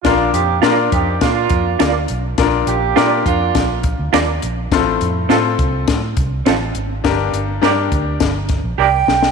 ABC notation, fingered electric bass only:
X:1
M:4/4
L:1/16
Q:1/4=103
K:Bb
V:1 name="Fingered electric bass" clef=bass
B,,,2 F,,2 B,,2 F,,2 B,,2 F,,2 D,,2 _C,,2 | B,,,2 B,,,2 B,,2 F,,2 B,,,3 D,, E,,2 B,,,2 | A,,,2 F,,2 A,,2 C,,2 A,,2 C,,2 A,,,2 _A,,,2 | G,,,2 G,,,2 G,,2 D,,2 G,,,3 B,,, C,,2 _C,,2 |]